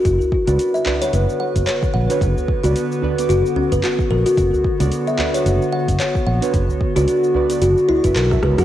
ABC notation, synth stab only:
X:1
M:4/4
L:1/16
Q:"Swing 16ths" 1/4=111
K:none
V:1 name="Synth stab"
z3 [D^FBd]3 [DFBd] [DFB^f]8 [DFB^c]- | [D^FB^c]3 [DFBd]3 [DFBd] [D,B,Fd']8- [D,B,Fd']- | [D,B,^Fd']3 [B,DFd]3 [DFBd] [DFB^f]8 [DFB^c]- | [D^FB^c]3 [DFBd]3 [DFBd] [DFBd]4 [DFBe]2 [DFBe] z [EF^A^f] |]